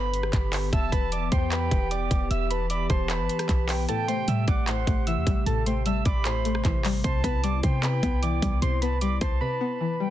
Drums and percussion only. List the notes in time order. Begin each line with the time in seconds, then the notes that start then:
0.14 closed hi-hat
0.23 cross-stick
0.33 kick, clap, closed hi-hat
0.53 clap, open hi-hat
0.73 kick, closed hi-hat
0.92 kick, closed hi-hat
1.12 closed hi-hat
1.32 kick, closed hi-hat
1.52 clap, closed hi-hat
1.71 kick, closed hi-hat
1.91 closed hi-hat
2.11 kick, closed hi-hat
2.31 closed hi-hat
2.51 closed hi-hat
2.70 closed hi-hat
2.90 kick, cross-stick, closed hi-hat
3.10 clap, closed hi-hat
3.29 closed hi-hat
3.39 cross-stick, closed hi-hat
3.49 kick, clap, closed hi-hat
3.69 clap, open hi-hat
3.89 closed hi-hat
4.08 closed hi-hat
4.28 closed hi-hat
4.48 kick, closed hi-hat
4.67 clap, closed hi-hat
4.87 kick, closed hi-hat
5.07 closed hi-hat
5.27 kick, closed hi-hat
5.46 closed hi-hat
5.66 closed hi-hat
5.86 closed hi-hat
6.05 kick, closed hi-hat
6.25 clap, closed hi-hat
6.45 closed hi-hat
6.55 cross-stick
6.65 kick, clap, closed hi-hat
6.85 clap, open hi-hat
7.04 kick, closed hi-hat
7.24 kick, closed hi-hat
7.44 closed hi-hat
7.63 kick, closed hi-hat
7.83 clap, closed hi-hat
8.03 kick, closed hi-hat
8.23 closed hi-hat
8.42 kick, closed hi-hat
8.62 closed hi-hat
8.82 closed hi-hat
9.01 closed hi-hat
9.21 kick, cross-stick, closed hi-hat